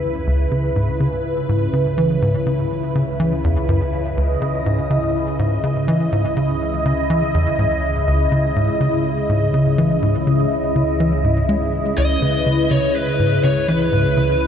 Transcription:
Already playing: C#2 C#3 E4 B4
0.27 C#2
0.52 C#3
0.76 G#2
1.00 C#3
1.49 G#2
1.73 C#3
1.98 E3
2.22 G#2
2.47 C#3
2.95 C#3
3.20 E3
3.44 E2
3.69 F#2
4.17 C#2 D#5
4.42 C#3
4.66 G#2
4.91 C#3
5.39 G#2
5.64 C#3
5.88 E3
6.12 G#2
6.37 C#3
6.86 C#3
7.10 E3
7.34 E2
7.59 G#2
8.08 C#2
8.32 C#3
8.56 G#2
8.81 C#3
9.29 G#2
9.54 C#3
9.78 E3
10.02 G#2
10.27 C#3
10.76 C#3
11.00 E3
11.25 G#2
11.49 G#3
11.98 C#2 B4 D#5
12.22 C#3
12.46 C#3
12.71 C#3 C#5
12.95 B4
13.20 G#2
13.44 C#3 C#5
13.68 E3 B4
13.93 G#2
14.17 C#3

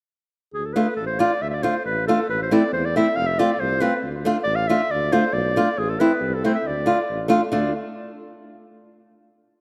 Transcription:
0.53 D2 G#4
0.65 A4
0.74 A3 D4 F4 B4
0.96 A1 A4
1.06 C5
1.19 A3 D4 F4 D5
1.41 D2 E5
1.50 D5 E5
1.63 A3 D4 F4 C5
1.85 A1 B4
2.07 A3 D4 F4 A4
2.29 A1 B4
2.43 C5
2.51 A3 C4 E4 D5
2.73 E2 C5
2.85 D5
2.96 A3 C4 E4 E5
3.16 F1 F5
3.27 E5
3.39 A3 C4 F4 D5
3.59 C2 C5
3.80 A3 C4 F4 B4
4.03 D2
4.25 A3 D4 F4
4.44 A1 D5
4.56 F5
4.68 A3 D4 F4 E5
4.90 D2 D5
5.12 A3 D4 F4 C5
5.33 B1 D5
5.56 A3 D4 F4
5.77 A1 G#4
5.89 A4
6.00 A3 C4 E4 B4
6.21 C2
6.34 A4
6.44 A3 C4 E4 C5
6.55 E5
6.65 D2 D5
6.86 A3 D4 F4
7.09 A1
7.28 A3 D4 F4
7.52 D2 A3 D4 F4 D5

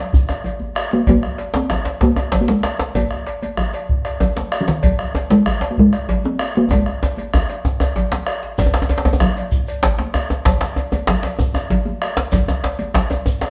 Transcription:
Already playing: G#3
0.13 bombo rim, bombo low, high conga, djembe bass
0.29 bombo rim, cowbell, djembe tone
0.44 bombo rim, cowbell, high conga, low conga, djembe bass
0.60 high conga, djembe bass
0.75 bombo rim, cowbell, djembe slap
0.91 A#3, djembe slap, high conga
1.06 A#3, bombo low, cowbell, djembe slap, high conga, djembe bass, low conga
1.23 bombo rim
1.38 cowbell, djembe slap
1.54 C4, cowbell, djembe slap, high conga, djembe tone
1.70 bombo rim, djembe slap, low conga, djembe bass
1.85 cowbell, djembe slap
2.01 A#3, bombo low, djembe slap
2.16 bombo rim, cowbell, djembe tone
2.32 cowbell, djembe slap, high conga, low conga, djembe bass
2.41 A#3
2.48 G#3, djembe slap, djembe tone, high conga
2.63 bombo rim, cowbell, djembe slap
2.79 djembe slap, high conga
2.95 A#3, bombo low, cowbell, djembe slap, high conga, djembe tone, djembe bass, low conga
3.11 bombo rim, djembe slap
3.26 cowbell, djembe slap
3.42 cowbell, djembe tone, high conga
3.57 bombo rim, djembe bass, low conga
3.73 cowbell, djembe slap
3.89 bombo low
4.05 bombo rim, cowbell
4.20 cowbell, djembe slap, high conga, djembe tone, djembe bass, low conga
4.36 djembe slap, djembe tone, high conga
4.52 bombo rim, cowbell
4.61 F3
4.68 D#3, djembe slap
4.83 bombo low, cowbell, djembe slap, high conga, djembe bass, low conga
4.99 bombo rim, djembe slap
5.15 cowbell, djembe slap, djembe tone
5.30 G#3, cowbell, djembe slap, high conga, djembe tone
5.46 bombo rim, djembe bass, low conga
5.61 cowbell, djembe slap
5.71 A#3
5.78 G#3, bombo low
5.93 bombo rim, cowbell
6.09 cowbell, djembe slap, high conga, djembe bass, low conga
6.24 C4, high conga, djembe tone
6.39 bombo rim, cowbell
6.55 A#3, djembe slap, high conga
6.70 G#3, bombo low, cowbell, djembe slap, high conga, djembe tone, low conga, djembe bass
6.86 bombo rim
7.02 bombo rim, cowbell, djembe slap, high conga, djembe tone
7.17 cowbell, high conga, djembe tone
7.34 bombo rim, djembe tone, low conga, djembe bass
7.49 bombo rim, cowbell, djembe slap, high conga
7.65 bombo low, djembe tone
7.80 bombo rim, cowbell, djembe tone, high conga
7.96 cowbell, djembe slap, high conga, djembe bass, low conga
8.12 bombo rim, djembe slap, djembe tone, high conga
8.27 bombo rim, cowbell
8.43 djembe slap
8.58 bombo low, cowbell, djembe slap, high conga, djembe tone, low conga, djembe bass, shekere
8.66 djembe tone
8.74 bombo rim, djembe slap, shekere
8.82 djembe tone
8.89 cowbell, djembe slap, djembe tone
8.98 djembe slap
9.05 cowbell, djembe tone, high conga
9.13 djembe tone
9.20 bombo rim, djembe slap, djembe bass, low conga
9.37 cowbell, djembe slap
9.52 bombo low, shekere
9.68 cowbell, shekere
9.83 cowbell, djembe slap, high conga, low conga, djembe bass
9.98 djembe slap, djembe tone, high conga
10.14 bombo rim, cowbell, djembe tone, shekere
10.30 djembe slap, djembe tone, high conga
10.45 bombo low, cowbell, djembe slap, high conga, djembe bass, low conga, shekere
10.61 bombo rim, djembe slap, shekere
10.76 cowbell, djembe tone
10.92 cowbell, djembe tone, high conga
11.07 bombo rim, djembe slap, djembe bass, low conga
11.23 cowbell, djembe slap
11.39 bombo low, djembe tone, shekere
11.54 bombo rim, cowbell, djembe tone, shekere
11.70 cowbell, djembe slap, high conga, low conga, djembe bass
11.86 high conga, djembe tone
12.02 bombo rim, cowbell
12.17 djembe slap, high conga
12.32 bombo low, cowbell, djembe slap, high conga, djembe tone, djembe bass, low conga, shekere
12.48 bombo rim, djembe slap, djembe tone, shekere
12.64 cowbell, djembe slap
12.79 cowbell, high conga, djembe tone
12.94 bombo rim, djembe slap, low conga, djembe bass
13.10 cowbell, djembe slap, djembe tone
13.26 bombo low, djembe tone, shekere
13.41 bombo rim, cowbell, djembe slap, shekere

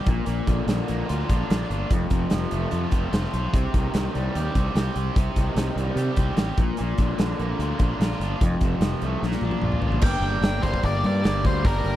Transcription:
0.06 A#1 A#2, kick, closed hi-hat
0.26 A#1 A#2, closed hi-hat
0.47 A#1 D3, kick, closed hi-hat
0.67 A#1 D3, snare, closed hi-hat
0.87 A#1 A#3, closed hi-hat
1.08 D2 F4, closed hi-hat
1.29 A#1 D4, kick, closed hi-hat
1.50 A#1 F4, snare, closed hi-hat
1.70 G1 D4, closed hi-hat
1.90 F1 F2, kick, closed hi-hat
2.10 F1 C3, kick, closed hi-hat
2.30 F1 F3, snare, closed hi-hat
2.51 F1 A3, closed hi-hat
2.71 F2 F4, closed hi-hat
2.91 F1 C4, kick, closed hi-hat
3.12 F1 F4, snare, closed hi-hat
3.24 snare
3.33 B1 C4, closed hi-hat
3.53 C2 C3, kick, closed hi-hat
3.73 C2 D#3, kick, closed hi-hat
3.94 C2 D#3, snare, closed hi-hat
4.14 C2 G3, closed hi-hat
4.35 D#2 G4, closed hi-hat
4.55 C2 C4, kick, closed hi-hat
4.75 C2 G4, snare, closed hi-hat
4.96 C2 C4, closed hi-hat
5.16 C2 C3, kick, closed hi-hat
5.36 C2 D#3, kick, closed hi-hat
5.56 C2 D#3, snare, closed hi-hat
5.76 C2 G3, closed hi-hat
5.96 C3 G4, closed hi-hat
6.16 C2 C4, kick, closed hi-hat
6.37 A1 G4, snare, closed hi-hat
6.57 A#1 A#2, kick, closed hi-hat
6.77 A#1 A#2, closed hi-hat
6.98 A#1 D3, kick, closed hi-hat
7.19 A#1 D3, snare, closed hi-hat
7.39 A#1 A#3, closed hi-hat
7.59 D2 F4, closed hi-hat
7.79 A#1 D4, kick, closed hi-hat
8.00 A#1 F4, snare, closed hi-hat
8.20 G1 D4, closed hi-hat
8.41 F1 F2, kick, closed hi-hat
8.61 F1 C3, kick, closed hi-hat
8.80 F1 F3, snare, closed hi-hat
9.01 C2 A3, closed hi-hat
9.22 A#1 A#2, snare
9.32 snare
9.41 A#1 D4, high tom
9.51 high tom
9.62 A#1 F4, mid tom
9.72 mid tom
9.82 A1 D4, floor tom
9.92 floor tom
10.02 G1 G3 A#3 D4 G5, kick, crash
10.06 G4
10.20 G1, open hi-hat
10.41 G1, snare, open hi-hat
10.62 G1 G3 A#3 D4 G4 C5, kick, open hi-hat
10.74 kick
10.83 G1 D5, kick, open hi-hat
11.04 G2 D5, open hi-hat
11.23 G1 G3 A#3 D4 G4, snare, open hi-hat
11.45 D2 C5, kick, open hi-hat
11.63 G1 G3 A#3 D4 G4 A#4, kick, open hi-hat
11.84 G1, open hi-hat

